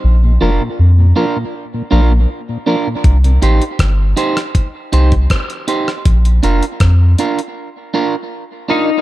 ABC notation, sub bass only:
X:1
M:4/4
L:1/16
Q:1/4=80
K:Bbmix
V:1 name="Sub bass" clef=bass
B,,,2 F,,, z F,,2 z4 B,,,2 z4 | C,,2 =A,,, z G,,,2 z4 C,,2 z4 | B,,,2 F,,, z F,,2 z8 z2 |]